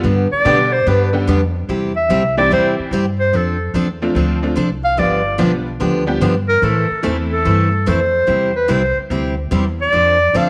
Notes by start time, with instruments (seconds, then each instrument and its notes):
0.03 upright bass G2, steel-string acoustic guitar D3 G3 B3 D4 G4
0.32 clarinet D5, muted upright bass stroke
0.45 upright bass B2, honky-tonk piano D3 G3 B3 D4 G4, steel-string acoustic guitar D3 G3 B3 D4 G4
0.73 clarinet C5
0.86 upright bass G2, steel-string acoustic guitar D3 G3 B3 D4 G4, clarinet B4
1.13 honky-tonk piano D3 G3 B3 D4 G4
1.27 upright bass F2, steel-string acoustic guitar D3 G3 B3 D4 G4
1.69 upright bass E2, steel-string acoustic guitar C3 G3 C4 E4 G4
1.96 clarinet E5
2.09 upright bass C2, steel-string acoustic guitar C3 G3 C4 E4 G4
2.37 honky-tonk piano E3 G3 C4 E4 G4, clarinet D5
2.50 upright bass E2, steel-string acoustic guitar C3 G3 C4 E4 G4, clarinet C5
2.79 muted upright bass stroke
2.91 upright bass G2, steel-string acoustic guitar C3 G3 C4 E4 G4
3.20 clarinet C5
3.33 upright bass F2, steel-string acoustic guitar F3 C4 D4 A4, clarinet A4
3.74 upright bass E2, steel-string acoustic guitar F3 C4 D4 A4
4.02 honky-tonk piano F3 A3 C4 D4 F4
4.15 upright bass D2, steel-string acoustic guitar F3 C4 D4 A4
4.43 honky-tonk piano F3 A3 C4 D4 F4
4.56 upright bass C2, steel-string acoustic guitar F3 C4 D4 A4
4.84 clarinet F5
4.97 upright bass G1, steel-string acoustic guitar D3 F3 B3 D4 G4, clarinet D5
5.38 upright bass B1, steel-string acoustic guitar D3 F3 B3 D4 G4, honky-tonk piano F3 G3 B3 D4 F4
5.80 upright bass D2, steel-string acoustic guitar D3 F3 B3 D4 G4
6.07 honky-tonk piano F3 G3 B3 D4 G4
6.21 upright bass G2, steel-string acoustic guitar D3 F3 B3 D4 G4
6.49 clarinet A#4
6.62 upright bass A2, steel-string acoustic guitar E3 A3 C4 E4 A4, clarinet A4
6.90 muted upright bass stroke
7.03 upright bass E2, honky-tonk piano E3 A3 C4 E4 A4, steel-string acoustic guitar E3 A3 C4 E4 A4
7.32 clarinet A4
7.45 upright bass G2, steel-string acoustic guitar E3 A3 C4 E4 A4
7.86 upright bass F2, steel-string acoustic guitar E3 A3 C4 E4 A4, clarinet C5
8.27 upright bass E2, steel-string acoustic guitar C3 G3 C4 E4 G4
8.56 clarinet B4
8.68 upright bass C2, steel-string acoustic guitar C3 G3 C4 E4 G4, clarinet C5
8.97 muted upright bass stroke
9.10 upright bass D2, steel-string acoustic guitar C3 G3 C4 E4 G4
9.51 upright bass E2, steel-string acoustic guitar C3 G3 C4 E4 G4
9.82 clarinet D5
9.93 upright bass F2, steel-string acoustic guitar F3 C4 D4 A4
10.33 upright bass D2, steel-string acoustic guitar F3 C4 D4 A4, clarinet F5